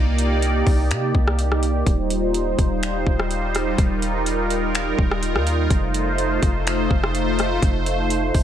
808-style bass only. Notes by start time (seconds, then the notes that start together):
Already playing: C2
0.67 C2
0.91 C3
1.15 C2
1.86 D#1
2.59 D#1
3.07 D#1
3.78 D#1
4.99 D#1
5.35 D#2
5.71 F1
6.43 F1
6.91 F1
7.62 F1
8.35 F1